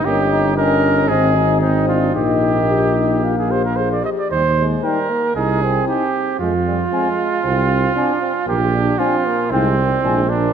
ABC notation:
X:1
M:4/4
L:1/16
Q:1/4=115
K:Eb
V:1 name="Cornet"
e4 e4 e4 e4 | e8 f6 z2 | z4 g4 z4 g4 | z4 a4 z4 a4 |
z4 a4 g4 a4 |]
V:2 name="Trumpet"
G4 B4 A4 E2 F2 | G8- G A c B c d e d | c3 z B4 A4 G4 | F16 |
G4 F4 C6 D2 |]
V:3 name="French horn"
_D4 D4 C4 C2 =D2 | E4 G2 E2 F2 G2 A2 G2 | z4 E4 z4 E4 | z4 C4 z4 C4 |
z4 D4 E4 D4 |]
V:4 name="Trombone"
B,2 E2 _D4 C2 E2 C4 | B,12- B,2 z2 | G,2 A,2 G,2 B,2 E2 C6 | A,2 G,2 A,4 C4 D2 C2 |
B,2 D2 C2 B,2 A,2 G,2 A,2 B,2 |]
V:5 name="Tuba" clef=bass
G,,,8 A,,,8 | B,,,12- B,,,2 z2 | E,,4 z4 C,,4 z4 | F,,4 z4 C,,4 z4 |
B,,,4 z4 C,,4 B,,,4 |]